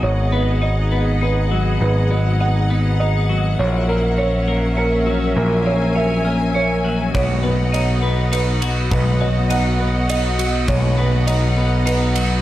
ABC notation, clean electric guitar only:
X:1
M:3/4
L:1/8
Q:1/4=102
K:B
V:1 name="Clean electric guitar"
G,, B, D B, D F, | G,, B, D B, D F, | A,, A, C A, C F, | A,, A, C A, C F, |
B,, B, D B, D F, | B,, B, D B, D F, | B,, B, D B, D F, |]